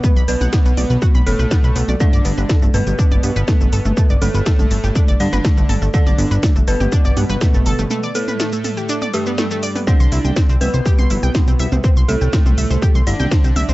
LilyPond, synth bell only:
\new Staff \with { instrumentName = "Synth bell" } { \time 4/4 \key g \major \tempo 4 = 122 b'8 b'2 a'4. | d''4. b'2~ b'8~ | b'8 a'2 d''4. | d''4. b'2~ b'8~ |
b'8 a'2 g'4. | d''4. b'2~ b'8~ | b'8 a'2 d''4. | }